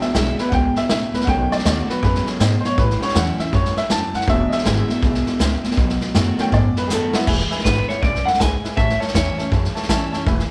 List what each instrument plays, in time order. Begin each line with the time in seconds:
Already playing: steel-string acoustic guitar E2, upright piano F#3 G#3 D4
0.00 clean electric guitar E2 B2, upright piano E5, muted upright bass stroke, snare
0.14 upright bass B1, clean electric guitar E2 C#3, steel-string acoustic guitar D3 G#3 B3 E4, upright piano E5, snare, hi-hat pedal
0.37 clean electric guitar E2 B2, steel-string acoustic guitar B3 E4, upright piano B4, muted upright bass stroke, snare
0.49 upright bass C#2, clean electric guitar E2 B2, steel-string acoustic guitar G#2, upright piano F#5, kick, snare
0.53 upright piano G5
0.75 clean electric guitar E2 B2, upright piano E5, snare
0.89 upright bass B1, clean electric guitar E2 C#3, steel-string acoustic guitar A2, upright piano E5, snare, hi-hat pedal
1.13 upright bass C#2, clean electric guitar E2 B2, upright piano B4, snare
1.21 upright piano F#5, snare
1.26 upright bass B1, clean electric guitar B2 F#3, steel-string acoustic guitar B2, upright piano D#3 A3 C#4 G5, kick, snare
1.50 clean electric guitar B2 F#3, upright piano D5, muted upright bass stroke, snare
1.58 snare
1.63 upright bass D#2, clean electric guitar B2 G#3, steel-string acoustic guitar D#3 A3 B3 F#4, upright piano D5, snare, hi-hat pedal
1.87 clean electric guitar B2 F#3, steel-string acoustic guitar B3 F#4, upright piano B4, muted upright bass stroke, snare
2.02 upright bass F#2, clean electric guitar B2 F#3, steel-string acoustic guitar C#3, upright piano B4, kick, snare
2.15 snare
2.25 clean electric guitar B2 F#3, upright piano D#3 A3 C#4, muted upright bass stroke, snare
2.39 upright bass G#2, clean electric guitar B2 G#3, steel-string acoustic guitar B2, snare, hi-hat pedal
2.61 clean electric guitar B2 F#3, upright piano C5, muted upright bass stroke, snare
2.65 upright piano C#5
2.77 upright bass A1, clean electric guitar A2 E3, steel-string acoustic guitar A2, upright piano B4, kick, snare
2.90 snare
3.00 clean electric guitar A2 E3, upright piano G3 B3 C#4 C#5, muted upright bass stroke, snare
3.08 snare
3.15 upright bass E2, clean electric guitar A2 F#3, steel-string acoustic guitar E3 G3 C#4 E4, upright piano F#5, snare, hi-hat pedal
3.38 clean electric guitar A2 E3, steel-string acoustic guitar C#4 E4, upright piano E5, muted upright bass stroke, snare
3.52 upright bass F#2, steel-string acoustic guitar G2, clean electric guitar A2 E3, upright piano G3 B3 C#4 C#5, kick, snare
3.65 snare
3.76 clean electric guitar A2 E3, upright piano E5, muted upright bass stroke, snare
3.90 upright bass E2, steel-string acoustic guitar F#2, clean electric guitar A2 F#3, upright piano A5, snare, hi-hat pedal
4.14 upright bass F#2, clean electric guitar A2 E3, upright piano F#5, snare
4.21 snare
4.27 upright bass E1, steel-string acoustic guitar E2, clean electric guitar E2 B2, upright piano F#3 G#3 D4 E5, kick, snare
4.48 clean electric guitar E2 B2, upright piano D#5, muted upright bass stroke, snare
4.53 upright piano E5
4.58 snare
4.64 upright bass G#1, clean electric guitar E2 C#3, steel-string acoustic guitar D3 G#3 B3 E4, snare, hi-hat pedal
4.88 clean electric guitar E2 B2, steel-string acoustic guitar B3 E4, muted upright bass stroke, snare
5.02 upright bass B1, clean electric guitar E2 B2, steel-string acoustic guitar G#2, kick, snare
5.14 snare
5.25 clean electric guitar E2 B2, snare
5.39 upright bass C#2, clean electric guitar E2 C#3, steel-string acoustic guitar A2, snare, hi-hat pedal
5.63 clean electric guitar E2 B2, muted upright bass stroke, snare
5.71 snare
5.76 upright bass B1, steel-string acoustic guitar B2, clean electric guitar B2 F#3, kick, snare
5.89 snare
6.01 clean electric guitar B2 F#3, muted upright bass stroke, snare
6.14 upright bass F#2, clean electric guitar B2 G#3, steel-string acoustic guitar D#3 A3 B3 F#4, snare, hi-hat pedal
6.38 clean electric guitar B2 F#3, upright piano D#3 A3 C#4 G5, muted upright bass stroke, snare
6.52 steel-string acoustic guitar F#2, upright bass G#2, clean electric guitar B2 F#3, upright piano D5, kick, snare
6.75 clean electric guitar B2 F#3, upright piano B4, muted upright bass stroke, snare
6.88 upright bass F#2, clean electric guitar B2 G#3, steel-string acoustic guitar D#3 A3 B3 F#4, upright piano G#4, snare, hi-hat pedal
6.93 upright piano A4
7.13 upright bass D#2, clean electric guitar B2 F#3, upright piano B3 E4, steel-string acoustic guitar B3 F#4, snare
7.27 upright bass E1, steel-string acoustic guitar E2, upright piano B4 E5 G#5, kick, snare, crash
7.39 snare
7.51 upright piano B4 E5 G#5, snare
7.58 snare
7.64 upright bass G#1, steel-string acoustic guitar D3 G#3 B3 E4, clean electric guitar B4, upright piano B4 E5 F#5, kick, snare, hi-hat pedal
7.88 steel-string acoustic guitar B3 E4, upright piano B4 E5 G#5, clean electric guitar C#5, muted upright bass stroke, snare
8.02 upright bass B1, steel-string acoustic guitar F#2, upright piano B4 E5 G#5, clean electric guitar D5, kick, snare
8.15 snare
8.26 upright piano B4 E5 G#5, clean electric guitar F#5, muted upright bass stroke, snare
8.34 snare
8.40 upright bass C#2, steel-string acoustic guitar G#2, upright piano B4 E5 G#5, clean electric guitar G#5, kick, snare, hi-hat pedal
8.64 upright piano B4 E5 G#5, muted upright bass stroke, snare
8.77 upright bass A1, steel-string acoustic guitar A2, upright piano C#5 E5 A5, clean electric guitar E5, kick, snare
8.89 snare
9.00 upright piano C#5 E5 A5, clean electric guitar C#5, muted upright bass stroke, snare
9.08 snare
9.13 upright bass E2, steel-string acoustic guitar E3 G3 C#4 E4, clean electric guitar C#5, upright piano E5 A5, kick, snare, hi-hat pedal
9.37 steel-string acoustic guitar C#4 E4, upright piano C#5 E5 A5, muted upright bass stroke, snare
9.52 steel-string acoustic guitar E2, upright bass F#2, upright piano C#5 E5 A5, kick, snare
9.64 snare
9.74 upright piano C#5 E5 A5, muted upright bass stroke, snare
9.82 snare
9.88 upright bass E2, steel-string acoustic guitar E3 G3 C#4 E4, upright piano C#5 E5 A5, kick, snare, hi-hat pedal
10.12 upright bass F#2, steel-string acoustic guitar C#4 E4, upright piano C#5 E5 A5, snare
10.26 upright bass E1, steel-string acoustic guitar E2, upright piano B4 E5 G#5, kick, snare
10.39 snare